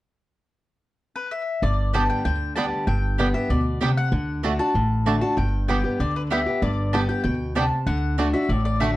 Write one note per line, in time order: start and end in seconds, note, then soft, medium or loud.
1.16 1.32 B4 medium
1.31 1.63 E5 medium
1.62 2.08 G1 medium
1.62 2.22 G2 medium
1.62 1.92 D5 medium
1.93 2.23 D3 medium
1.93 2.24 G3 medium
1.93 2.01 G3 medium
1.93 2.03 B3 medium
1.93 2.24 B3 medium
1.93 2.01 B3 medium
1.93 2.02 D4 medium
1.93 2.03 G4 medium
1.93 2.24 G4 medium
1.93 2.03 D5 medium
1.93 2.03 G5 medium
1.93 2.09 A5 loud
2.10 2.24 G5 medium
2.25 2.71 D2 medium
2.25 2.55 D3 medium
2.25 2.55 G5 loud
2.56 2.86 D3 medium
2.56 2.86 G3 medium
2.56 2.64 G3 medium
2.56 2.65 B3 medium
2.56 2.86 B3 medium
2.56 2.64 B3 medium
2.56 2.64 D4 medium
2.56 2.65 G4 medium
2.56 2.87 G4 medium
2.56 2.66 D5 loud
2.56 2.66 G5 loud
2.56 2.85 A5 medium
2.87 3.33 G1 medium
2.87 3.47 G2 medium
2.87 3.34 G5 loud
3.18 3.34 D3 medium
3.18 3.34 G3 medium
3.18 3.26 G3 medium
3.18 3.27 B3 medium
3.18 3.34 B3 medium
3.18 3.26 B3 medium
3.18 3.26 D4 medium
3.18 3.28 G4 medium
3.18 3.33 G4 medium
3.18 3.28 D5 medium
3.18 3.28 G5 medium
3.34 3.50 B3 soft
3.34 3.49 G4 medium
3.34 3.50 E5 medium
3.50 3.95 D2 medium
3.50 3.80 B2 medium
3.50 3.79 D5 medium
3.81 4.11 C3 medium
3.81 3.89 G3 medium
3.81 3.90 B3 medium
3.81 3.89 B3 medium
3.81 3.89 D4 medium
3.81 3.90 G4 loud
3.81 3.90 D5 loud
3.81 3.91 G5 loud
3.97 4.59 F#5 medium
4.12 4.58 D2 medium
4.12 4.42 D3 medium
4.43 4.58 D3 medium
4.43 4.53 A3 medium
4.43 4.59 A3 medium
4.43 4.51 A3 medium
4.43 4.59 D4 medium
4.43 4.47 D4 medium
4.43 4.53 F#4 medium
4.43 4.58 F#4 medium
4.43 4.53 D5 medium
4.43 4.53 A5 medium
4.59 4.75 D4 soft
4.59 4.74 F#4 medium
4.59 5.20 A5 loud
4.74 5.20 A1 medium
4.74 5.34 A2 medium
5.06 5.21 D3 medium
5.06 5.15 A3 medium
5.06 5.21 A3 medium
5.06 5.14 A3 medium
5.06 5.21 D4 medium
5.06 5.10 D4 medium
5.06 5.15 F#4 medium
5.06 5.20 F#4 medium
5.06 5.15 D5 loud
5.06 5.16 A5 medium
5.21 5.37 D4 soft
5.21 5.36 F#4 medium
5.21 5.37 A5 medium
5.37 5.83 G1 medium
5.37 5.96 G2 medium
5.37 5.66 G5 medium
5.68 5.83 D3 medium
5.68 5.84 G3 medium
5.68 5.76 G3 medium
5.68 5.78 B3 medium
5.68 5.84 B3 medium
5.68 5.76 B3 medium
5.68 5.76 D4 medium
5.68 5.78 G4 medium
5.68 5.83 G4 medium
5.68 5.78 D5 medium
5.68 6.01 G5 medium
5.68 5.78 G5 medium
5.84 6.00 B3 soft
5.84 5.99 G4 medium
5.99 6.45 D2 medium
5.99 6.30 D3 medium
5.99 6.16 D5 medium
6.16 6.21 B4 medium
6.30 6.46 D3 medium
6.30 6.46 G3 medium
6.30 6.38 G3 medium
6.30 6.40 B3 medium
6.30 6.46 B3 medium
6.30 6.38 B3 medium
6.30 6.39 D4 medium
6.30 6.40 G4 medium
6.30 6.45 G4 medium
6.30 6.40 D5 loud
6.30 6.60 E5 medium
6.30 6.40 G5 medium
6.46 6.62 B3 soft
6.46 6.61 G4 medium
6.62 7.08 G1 medium
6.62 7.22 G2 medium
6.62 6.94 D5 medium
6.93 7.08 D3 medium
6.93 7.09 G3 medium
6.93 7.01 G3 medium
6.93 7.02 B3 medium
6.93 7.09 B3 medium
6.93 7.01 B3 medium
6.93 7.01 D4 medium
6.93 7.02 G4 medium
6.93 7.08 G4 medium
6.93 7.03 D5 medium
6.93 7.03 G5 medium
6.93 6.98 A5 medium
7.09 7.25 B3 soft
7.09 7.24 G4 medium
7.09 7.22 G5 medium
7.24 7.70 D2 medium
7.24 7.54 B2 medium
7.24 7.55 G5 medium
7.55 7.85 C3 medium
7.55 7.63 G3 medium
7.55 7.65 B3 medium
7.55 7.63 B3 medium
7.55 7.63 D4 medium
7.55 7.65 G4 medium
7.55 7.65 D5 loud
7.55 7.65 G5 loud
7.55 7.85 A5 medium
7.86 8.32 D2 medium
7.86 8.17 D3 medium
7.86 8.30 F#5 medium
8.18 8.33 D3 medium
8.18 8.27 A3 medium
8.18 8.33 A3 medium
8.18 8.26 A3 medium
8.18 8.34 D4 medium
8.18 8.21 D4 medium
8.18 8.27 F#4 medium
8.18 8.32 F#4 medium
8.18 8.27 D5 medium
8.18 8.28 A5 medium
8.34 8.49 D4 soft
8.34 8.49 F#4 medium
8.34 8.50 E5 medium
8.49 8.95 A1 medium
8.49 8.97 A2 medium
8.49 8.64 D5 medium
8.65 8.81 D5 medium
8.80 8.97 D3 medium
8.80 8.89 A3 medium
8.80 8.97 A3 medium
8.80 8.88 A3 medium
8.80 8.97 D4 medium
8.80 8.84 D4 medium
8.80 8.90 F#4 loud
8.80 8.97 F#4 medium
8.80 8.90 D5 medium
8.80 8.97 E5 medium
8.80 8.90 A5 loud